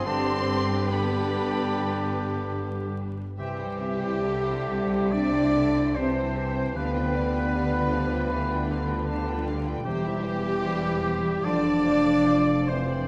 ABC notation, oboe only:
X:1
M:4/4
L:1/8
Q:1/4=74
K:C
V:1 name="Oboe"
G2 G4- G z | G4 d2 c2 | B6- B z | G4 d3 c |]